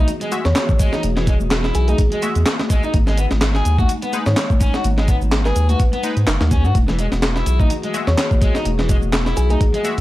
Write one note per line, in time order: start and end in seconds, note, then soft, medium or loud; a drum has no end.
0.00 2.90 E3 medium
0.00 6.71 B3 medium
0.00 2.90 F#4 medium
0.00 2.90 G#4 medium
0.08 closed hi-hat medium
0.08 shaker soft
0.21 0.32 G#3 medium
0.21 closed hi-hat soft
0.21 shaker soft
0.32 0.43 G#3 medium
0.32 0.43 F#4 medium
0.32 0.43 E5 loud
0.32 closed hi-hat medium
0.32 high conga medium
0.32 shaker medium
0.45 0.54 E2 medium
0.45 0.60 C#5 loud
0.45 snare soft
0.45 low conga medium
0.45 shaker soft
0.56 snare loud
0.56 clap loud
0.56 closed hi-hat medium
0.56 shaker soft
0.69 kick loud
0.69 high conga medium
0.69 low conga medium
0.69 shaker soft
0.79 0.92 G#3 loud
0.79 kick medium
0.79 closed hi-hat medium
0.79 shaker medium
0.93 1.02 D#4 loud
0.93 snare soft
0.93 shaker soft
1.03 1.36 E1 loud
1.03 closed hi-hat medium
1.03 high conga loud
1.03 shaker soft
1.17 1.26 E3 medium
1.17 snare medium
1.17 shaker soft
1.27 1.34 G#3 medium
1.27 kick medium
1.27 closed hi-hat medium
1.27 shaker medium
1.40 1.71 E1 medium
1.40 high conga medium
1.40 shaker soft
1.51 snare loud
1.51 clap loud
1.51 closed hi-hat medium
1.51 shaker soft
1.64 1.87 E4 medium
1.64 snare soft
1.64 shaker soft
1.75 1.94 B1 medium
1.75 1.83 G#4 medium
1.75 closed hi-hat medium
1.75 shaker medium
1.88 1.97 D#4 loud
1.88 1.95 G#4 medium
1.88 closed hi-hat soft
1.88 high conga medium
1.88 shaker soft
1.98 kick loud
1.98 closed hi-hat medium
1.98 shaker soft
2.12 2.22 G#3 medium
2.12 closed hi-hat soft
2.12 shaker soft
2.22 2.34 G#3 loud
2.22 2.34 F#4 medium
2.22 2.34 E5 loud
2.22 closed hi-hat medium
2.22 high conga medium
2.22 shaker medium
2.35 2.44 E2 medium
2.35 closed hi-hat soft
2.35 shaker soft
2.46 snare loud
2.46 clap loud
2.46 closed hi-hat medium
2.46 shaker soft
2.59 snare medium
2.59 high conga loud
2.59 shaker soft
2.70 2.82 G#3 loud
2.70 kick medium
2.70 closed hi-hat medium
2.70 shaker medium
2.83 2.93 D#4 loud
2.83 shaker soft
2.94 3.27 G#1 loud
2.94 6.71 G#3 medium
2.94 6.71 D#4 loud
2.94 kick loud
2.94 closed hi-hat medium
2.94 high conga medium
2.94 shaker soft
3.07 3.16 G#3 medium
3.07 snare soft
3.07 shaker soft
3.17 3.25 B3 medium
3.17 closed hi-hat medium
3.17 shaker medium
3.31 3.62 G#1 medium
3.31 snare medium
3.31 high conga medium
3.31 shaker soft
3.41 snare loud
3.41 clap loud
3.41 closed hi-hat medium
3.41 shaker soft
3.55 3.78 G#4 medium
3.55 snare soft
3.55 shaker soft
3.65 3.85 D#2 medium
3.65 closed hi-hat medium
3.65 shaker medium
3.79 3.88 F#4 loud
3.79 kick loud
3.79 high conga loud
3.79 shaker soft
3.89 closed hi-hat medium
3.89 shaker soft
4.02 4.13 B3 medium
4.02 closed hi-hat soft
4.02 shaker soft
4.13 4.24 G#3 medium
4.13 4.24 D#4 medium
4.13 4.24 B4 loud
4.13 closed hi-hat medium
4.13 high conga medium
4.13 shaker medium
4.26 4.35 G#2 medium
4.26 4.41 C#5 medium
4.26 snare soft
4.26 low conga medium
4.26 shaker soft
4.37 snare loud
4.37 clap loud
4.37 closed hi-hat medium
4.37 shaker soft
4.50 kick loud
4.50 high conga loud
4.50 low conga medium
4.50 shaker soft
4.61 4.73 C#4 loud
4.61 kick medium
4.61 closed hi-hat medium
4.61 shaker medium
4.74 4.83 F#4 loud
4.74 snare soft
4.74 shaker soft
4.84 5.17 G#1 loud
4.84 closed hi-hat medium
4.84 high conga loud
4.84 shaker soft
4.98 5.07 G#3 medium
4.98 snare medium
4.98 shaker soft
5.08 5.15 B3 medium
5.08 kick loud
5.08 closed hi-hat medium
5.08 shaker medium
5.21 5.52 G#1 medium
5.21 high conga medium
5.21 shaker soft
5.32 snare loud
5.32 clap loud
5.32 closed hi-hat medium
5.32 shaker soft
5.45 5.68 G#4 medium
5.45 5.80 B4 loud
5.45 snare soft
5.45 shaker soft
5.56 5.75 D#2 medium
5.56 closed hi-hat medium
5.56 shaker medium
5.69 5.78 F#4 loud
5.69 closed hi-hat soft
5.69 high conga loud
5.69 shaker soft
5.80 kick loud
5.80 closed hi-hat medium
5.80 shaker soft
5.93 6.03 B3 medium
5.93 closed hi-hat soft
5.93 shaker soft
6.03 6.15 G#3 medium
6.03 6.15 D#4 medium
6.03 6.15 B4 loud
6.03 closed hi-hat medium
6.03 high conga medium
6.03 shaker medium
6.17 6.25 G#2 medium
6.17 closed hi-hat soft
6.17 shaker soft
6.27 6.38 F#1 loud
6.27 snare loud
6.27 clap loud
6.27 closed hi-hat medium
6.27 shaker soft
6.40 6.66 D#2 loud
6.40 snare medium
6.40 high conga loud
6.40 shaker soft
6.51 6.63 C#4 loud
6.51 kick medium
6.51 closed hi-hat medium
6.51 shaker medium
6.64 6.73 G#2 loud
6.64 6.74 F#4 loud
6.64 shaker soft
6.75 7.08 E1 loud
6.75 10.01 E3 medium
6.75 10.01 B3 medium
6.75 10.01 F#4 medium
6.75 10.01 G#4 loud
6.75 kick loud
6.75 closed hi-hat medium
6.75 high conga loud
6.75 shaker soft
6.88 6.97 E3 medium
6.88 snare soft
6.88 shaker soft
6.99 7.06 G#3 medium
6.99 closed hi-hat medium
6.99 shaker medium
7.12 7.43 E1 medium
7.12 snare medium
7.12 high conga medium
7.12 shaker soft
7.22 snare loud
7.22 clap loud
7.22 closed hi-hat medium
7.22 shaker soft
7.36 7.58 E4 medium
7.36 snare soft
7.36 shaker soft
7.46 7.66 B1 medium
7.46 closed hi-hat medium
7.46 shaker medium
7.60 7.69 D#4 loud
7.60 kick medium
7.60 high conga medium
7.60 shaker soft
7.70 closed hi-hat medium
7.70 shaker soft
7.83 7.94 G#3 medium
7.83 closed hi-hat soft
7.83 shaker soft
7.94 8.05 G#3 loud
7.94 8.05 F#4 medium
7.94 8.05 E5 loud
7.94 closed hi-hat medium
7.94 high conga medium
7.94 shaker medium
8.07 8.16 E2 medium
8.07 8.22 C#5 medium
8.07 snare soft
8.07 low conga medium
8.07 shaker soft
8.18 snare loud
8.18 clap loud
8.18 closed hi-hat medium
8.18 shaker soft
8.31 kick loud
8.31 high conga medium
8.31 low conga medium
8.31 shaker soft
8.42 8.54 G#3 loud
8.42 kick loud
8.42 closed hi-hat medium
8.42 shaker medium
8.55 8.64 D#4 loud
8.55 snare soft
8.55 shaker soft
8.65 8.98 E1 loud
8.65 closed hi-hat medium
8.65 high conga loud
8.65 shaker soft
8.79 8.88 E3 medium
8.79 snare medium
8.79 shaker soft
8.89 8.96 G#3 medium
8.89 kick loud
8.89 closed hi-hat medium
8.89 shaker medium
9.02 9.33 E1 medium
9.02 high conga medium
9.02 shaker soft
9.13 snare loud
9.13 clap loud
9.13 closed hi-hat medium
9.13 shaker soft
9.26 9.49 E4 medium
9.26 snare soft
9.26 shaker soft
9.37 9.56 B1 medium
9.37 9.45 G#4 medium
9.37 closed hi-hat medium
9.37 shaker medium
9.49 9.59 D#4 loud
9.49 9.57 G#4 medium
9.49 closed hi-hat soft
9.49 high conga medium
9.49 shaker soft
9.61 kick loud
9.61 closed hi-hat medium
9.61 shaker soft
9.74 9.84 G#3 medium
9.74 closed hi-hat soft
9.74 shaker soft
9.84 9.96 G#3 loud
9.84 9.96 F#4 medium
9.84 9.96 E5 loud
9.84 closed hi-hat medium
9.84 high conga medium
9.84 shaker medium
9.98 10.01 E2 medium
9.98 shaker soft